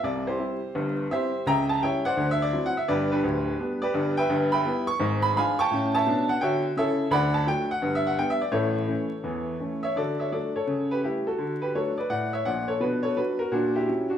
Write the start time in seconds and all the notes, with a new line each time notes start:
0.03 C2 C3 D5
0.27 E4 G4 C5
0.39 G3 C4 E4
0.75 G1 G2
1.11 G3 C4 E4 G4 C5 E5
1.46 C#2 C#3 E5 G5 A#5
1.69 A5
1.82 G3 C#4 E4 C#5 E5 G5
2.05 C5 D5 F#5
2.17 D2 D3
2.31 E5
2.42 D5
2.53 F#3 C4 E4
2.66 F#5
2.77 E5
2.88 G1 G2 G4 B4 D5
3.11 D4 G4 B4
3.24 D1 D2
3.60 G3 B3 D4
3.82 G4 B4 D5
3.94 G1 G2
4.17 B4 E5 G5
4.30 G1 G2
4.52 E5 G5 B5
4.65 G3 B3 E4
4.87 C#6
5.00 G#1 G#2
5.22 B5
5.36 F3 G#3 D4 F5 G#5 B5
5.59 G5 A5 C#6
5.71 A2 C#4
5.95 C#5 E5 A5
6.06 B2 D4
6.29 F#5
6.41 D3 F#4 C#5 E5 G5
6.76 C#3 E4 A4 C#5 E5
7.11 D2 D3 D5 F#5 B5
7.34 A5
7.47 F#3 A3 D4 G5
7.71 F#5
7.82 G1 G2
7.95 E5
8.07 F#5
8.18 G3 B3 D4 G5
8.30 E5
8.41 D5
8.52 A1 A2 E4 A4 C#5
8.88 E3 A3 C#4
9.24 E2 E3
9.60 E3 A3 C#4
9.83 C#5 E5
9.96 D3 F#4 A4 D5
10.20 C#5 E5
10.32 F#3 A3 D4 A4 D5
10.56 A4 C#5
10.67 C#3
10.91 G4 B4
11.03 G3 A3 E4 G4
11.27 F#4 A4
11.38 D3 F#4
11.62 G4 B4
11.75 F#3 A3 D4 A4 C#5
11.98 B4 D5
12.09 A2 D5 F#5
12.33 C#5 E5
12.45 A#1 A#2 D5 F#5
12.68 A4 C#5
12.80 B2 D4 F#4 B4
13.03 A4 C#5
13.16 F#3 D4 F#4 B4
13.39 F#4 A#4
13.52 A#2 D4 F#4
13.75 E4 G4
13.88 F#3 C#4 E4
14.10 D4 F#4